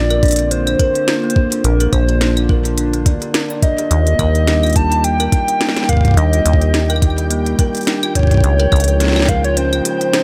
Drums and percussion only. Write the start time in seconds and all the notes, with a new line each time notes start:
0.10 closed hi-hat, claves
0.23 kick, closed hi-hat
0.26 closed hi-hat
0.28 closed hi-hat
0.31 closed hi-hat
0.36 closed hi-hat
0.39 closed hi-hat
0.51 closed hi-hat
0.67 closed hi-hat, claves
0.79 kick, closed hi-hat
0.95 closed hi-hat
1.08 snare, closed hi-hat
1.30 closed hi-hat
1.36 kick
1.52 closed hi-hat
1.64 closed hi-hat
1.80 closed hi-hat
1.93 kick, closed hi-hat, claves
2.09 closed hi-hat
2.21 snare, closed hi-hat
2.37 closed hi-hat, claves
2.49 kick
2.65 closed hi-hat
2.78 closed hi-hat
2.93 closed hi-hat
3.06 kick, closed hi-hat
3.22 closed hi-hat
3.34 snare, closed hi-hat
3.50 closed hi-hat
3.62 kick, closed hi-hat
3.78 closed hi-hat
3.91 closed hi-hat
4.07 closed hi-hat
4.19 kick, closed hi-hat, claves
4.35 closed hi-hat
4.47 snare, closed hi-hat
4.63 closed hi-hat, claves
4.66 closed hi-hat
4.70 closed hi-hat
4.73 kick, closed hi-hat
4.76 closed hi-hat
4.92 closed hi-hat
5.04 closed hi-hat
5.20 closed hi-hat, claves
5.32 kick, closed hi-hat
5.48 closed hi-hat
5.61 snare, closed hi-hat
5.69 snare
5.77 snare, closed hi-hat
5.83 snare
5.89 kick, closed hi-hat
5.93 kick
5.97 kick
6.01 kick
6.05 kick, closed hi-hat
6.08 kick
6.11 kick
6.14 kick, closed hi-hat
6.33 closed hi-hat
6.46 closed hi-hat
6.53 kick
6.61 closed hi-hat
6.74 snare, closed hi-hat
6.90 closed hi-hat, claves
6.96 claves
7.02 kick, closed hi-hat, claves
7.10 claves
7.18 closed hi-hat
7.31 closed hi-hat
7.46 closed hi-hat
7.59 kick, closed hi-hat
7.75 closed hi-hat
7.77 closed hi-hat
7.81 closed hi-hat
7.83 closed hi-hat
7.85 snare, closed hi-hat
7.87 closed hi-hat
8.03 closed hi-hat, claves
8.15 kick, closed hi-hat
8.19 kick
8.23 kick
8.27 kick
8.31 kick, closed hi-hat
8.34 kick
8.37 kick
8.41 kick, closed hi-hat
8.60 closed hi-hat
8.72 kick, closed hi-hat, claves
8.76 closed hi-hat
8.80 closed hi-hat
8.84 closed hi-hat
8.88 closed hi-hat
9.00 snare, closed hi-hat
9.04 snare
9.08 snare
9.12 snare
9.16 snare, claves
9.19 snare
9.22 snare
9.25 kick, snare, closed hi-hat
9.44 closed hi-hat
9.57 closed hi-hat
9.73 closed hi-hat, claves
9.85 closed hi-hat
10.01 closed hi-hat
10.13 snare, closed hi-hat